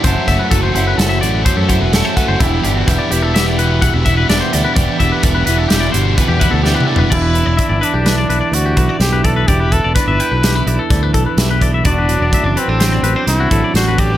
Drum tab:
CC |------------------------------|------------------------------|------------------------------|x-----------------------------|
HH |x--x--x--x--x--x--x--x--x--x--|x--x--x--x--x--x--x--x--x--x--|x--x--x--x--x--x--x--x--------|---x--x--x--x--x--x--x--x--x--|
SD |---o--------o-----------o-----|------o-----o-----------o--o--|------------o-----------o-----|------------o-----------o-----|
T2 |------------------------------|------------------------------|--------------------------o---|------------------------------|
FT |------------------------------|------------------------------|----------------------------o-|------------------------------|
BD |o--o--o-----------o--o-----o--|o-----o-----------o--o--------|o--o--o-----------o--o--------|o-----o--------------o-----o--|

CC |------------------------------|------------------------------|
HH |x--x--x--x--x--x--x--x--x--x--|x--x--x--x--x--x--x--x--x--x--|
SD |------o-----o-----o-----o-----|------------o-----o-----o-----|
T2 |------------------------------|------------------------------|
FT |------------------------------|------------------------------|
BD |o--o--o-----------o--o-----o--|o-----o--------------o-----o--|